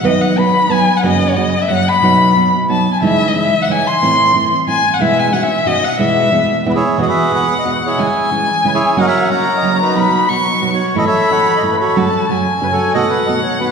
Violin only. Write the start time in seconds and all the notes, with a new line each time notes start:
0.05 D#5
0.21 F#5
0.38 B5
0.71 G#5
0.97 F#5
1.06 D#5
1.30 C#5
1.36 D#5
1.61 E5
1.69 F#5
1.88 B5
2.69 A5
2.93 G#5
3.03 E5
3.28 D#5
3.34 E5
3.62 F#5
3.71 G#5
3.87 C6
4.68 G#5
4.94 F#5
5.02 E5
5.19 G#5
5.33 F#5
5.42 E5
5.67 D#5
5.84 F#5
6.00 E5
6.98 F#5
7.99 G#5
8.98 F#5
9.32 A#5
9.95 B5
10.29 C#6
10.96 B5
11.88 B5
11.97 A5
12.30 G#5
12.96 F#5